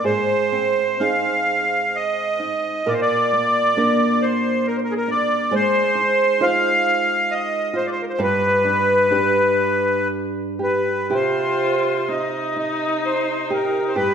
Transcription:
Already playing: A#3 D4
0.04 G#2 G#4 C5
0.52 C4
1.00 C4 D#4 G#4 F5
1.96 D#5
2.40 D#4
2.86 A#2 A#4 D5
2.94 C5
3.02 D5
3.33 A#3
3.77 A#3 D4 A#4
4.22 C5
4.67 A#4
4.77 C5
4.84 A#4
4.91 G#4
4.97 A#4
5.08 D4 D5
5.51 G#3 C5
5.55 C5
5.95 D#4
6.40 D#4 F4 C5 F5
7.31 D#5
7.74 F4 C5
7.86 D5
7.92 C5
8.02 A#4
8.10 C5
8.19 G2 B4
8.23 B4
8.65 D4
9.11 D4 G4 B4
10.59 G4
10.63 B4
11.10 C3 F4 G4
11.14 C5
12.08 C4 D#4 D#5
12.56 D#4 D#5
13.05 C5
13.50 G4 A#4
13.88 C5
13.95 G2 G4 B4

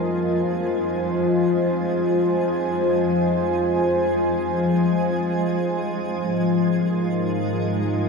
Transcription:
Already playing: F2 F3 G#3 F4 A#4 C5 D#5 G#5
0.76 G#5
6.23 G#2 G#3
6.65 A#4
6.97 D#4

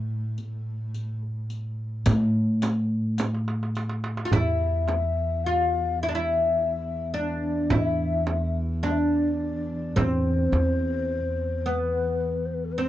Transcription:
Already playing: A2 A3
0.38 riq, darbuka ka
0.94 riq, darbuka ka
1.23 darbuka ka
1.50 riq
2.06 A2, riq, frame drum, darbuka dum
2.62 riq, darbuka tek, frame drum
3.18 riq, darbuka tek, frame drum
3.35 darbuka ka
3.48 darbuka tek
3.63 darbuka ka
3.75 riq, darbuka tek
3.90 darbuka ka
4.04 darbuka tek
4.17 darbuka ka
4.25 F4
4.31 E2 E4 E5, darbuka dum, frame drum
4.88 darbuka tek, frame drum
5.44 F4 F5, darbuka ka
6.01 E4 E5
6.09 D4
6.15 E4 E5
7.13 D4 D5, darbuka ka
7.70 E2 E4 E5, frame drum, darbuka dum
8.27 darbuka tek, frame drum
8.83 D4 D5, darbuka tek, frame drum
8.90 E5
8.98 D5
9.40 darbuka ka
9.96 E2 C4 C5, darbuka dum, frame drum
10.52 E2, darbuka tek, frame drum
11.09 darbuka ka
11.66 B3 B4
12.45 C5
12.53 B4
12.64 A4
12.71 B4
12.78 C4
12.83 C5

